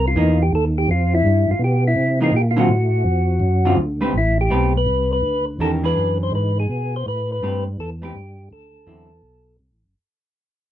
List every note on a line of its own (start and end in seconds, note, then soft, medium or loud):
0.00 0.15 C2 medium
0.08 0.42 F4 medium
0.16 0.51 E2 medium
0.16 0.37 E3 medium
0.16 0.38 A#3 medium
0.16 0.38 D#4 medium
0.42 0.53 G4 medium
0.52 0.87 D#2 medium
0.52 0.65 A4 medium
0.78 0.90 G4 medium
0.88 1.23 F2 medium
0.88 1.14 F4 medium
1.15 1.50 E4 medium
1.24 1.46 G2 medium
1.48 1.54 G2 soft
1.48 1.62 F4 medium
1.59 1.95 B2 medium
1.64 1.84 G4 medium
1.88 2.20 E4 medium
1.96 2.31 C3 medium
2.21 2.32 E3 medium
2.21 2.32 A#3 medium
2.21 2.32 D#4 medium
2.21 2.34 F4 medium
2.32 2.67 A#2 medium
2.36 2.42 G4 medium
2.51 2.58 F4 medium
2.56 2.68 D3 medium
2.56 2.68 F#3 medium
2.56 2.68 C4 medium
2.56 2.68 F4 medium
2.56 3.75 F#4 medium
2.68 3.04 A2 medium
3.04 3.40 F2 medium
3.40 3.76 F#2 medium
3.65 3.76 D3 medium
3.65 3.77 F#3 medium
3.65 3.77 C4 medium
3.65 3.77 F4 medium
3.77 4.13 D2 medium
4.01 4.12 A3 medium
4.01 4.13 C4 soft
4.01 4.13 G4 medium
4.01 4.13 B4 medium
4.14 4.49 A1 medium
4.14 4.38 E4 medium
4.41 4.73 G4 medium
4.50 4.86 B1 medium
4.50 4.72 A3 medium
4.50 4.72 C4 medium
4.50 4.72 G4 medium
4.50 4.72 B4 medium
4.77 5.11 B4 medium
4.86 5.22 C2 medium
5.13 5.45 B4 loud
5.22 5.58 D2 medium
5.59 5.94 E2 medium
5.59 5.81 D#3 medium
5.59 5.81 C#4 medium
5.59 5.81 G4 medium
5.59 5.72 A4 medium
5.59 5.82 A#4 medium
5.83 6.61 E3 medium
5.83 6.61 D4 medium
5.83 6.61 G#4 medium
5.83 6.62 B4 medium
5.83 6.18 B4 loud
5.96 6.31 F#2 medium
6.23 6.33 C5 medium
6.32 6.67 G#2 medium
6.32 6.58 B4 medium
6.60 6.95 G#4 medium
6.69 7.04 B2 medium
6.96 7.06 C5 medium
7.06 7.41 A2 medium
7.06 7.31 B4 medium
7.32 7.64 B4 loud
7.42 7.77 G2 medium
7.42 7.63 A3 soft
7.42 7.64 C4 medium
7.42 7.64 G4 medium
7.42 7.64 B4 medium
7.78 8.13 E2 medium
7.78 7.90 A4 medium
8.02 8.13 A3 medium
8.02 8.13 C4 medium
8.02 8.13 G4 medium
8.02 8.49 G4 medium
8.02 8.13 B4 medium
8.14 8.49 G2 medium
8.51 8.86 D2 medium
8.51 9.57 A4 medium
8.87 9.22 E2 medium
8.87 9.08 D3 medium
8.87 9.08 F#3 medium
8.87 9.08 C4 medium
8.87 9.08 E4 medium
9.22 9.58 B1 medium
9.59 9.71 C2 medium
9.72 9.84 A1 soft
9.84 9.95 F#1 medium